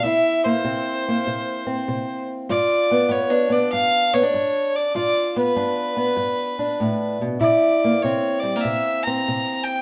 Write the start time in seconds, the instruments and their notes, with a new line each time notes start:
0.03 steel-string acoustic guitar C3 E4, fiddle E5
0.44 steel-string acoustic guitar A#3, fiddle C5
0.64 steel-string acoustic guitar C3 C4
1.08 steel-string acoustic guitar A#3
1.27 steel-string acoustic guitar C3
1.67 steel-string acoustic guitar C4
1.88 steel-string acoustic guitar C3
2.49 steel-string acoustic guitar G2 F4, fiddle D5
2.91 steel-string acoustic guitar B3
3.09 steel-string acoustic guitar G2 B3, fiddle C#5
3.30 steel-string acoustic guitar D4
3.50 steel-string acoustic guitar B3, fiddle D5
3.72 steel-string acoustic guitar G2, fiddle F5
4.14 steel-string acoustic guitar B3, fiddle C#5
4.23 steel-string acoustic guitar D4
4.34 steel-string acoustic guitar G2
4.76 fiddle D5
4.95 steel-string acoustic guitar G2 F4, fiddle D5
5.36 steel-string acoustic guitar B3, fiddle B4
5.56 steel-string acoustic guitar G2 D4
5.97 steel-string acoustic guitar B3
6.17 steel-string acoustic guitar G2
6.59 steel-string acoustic guitar D4
6.80 steel-string acoustic guitar A2
7.21 steel-string acoustic guitar B2
7.41 steel-string acoustic guitar C3 E4, fiddle D5
7.84 steel-string acoustic guitar A#3
8.02 steel-string acoustic guitar C3 C4, fiddle C#5
8.40 steel-string acoustic guitar G3, fiddle D5
8.56 steel-string acoustic guitar A#3
8.61 steel-string acoustic guitar C3, fiddle E5
9.03 fiddle A#5
9.07 steel-string acoustic guitar C4
9.28 steel-string acoustic guitar C3
9.64 fiddle G5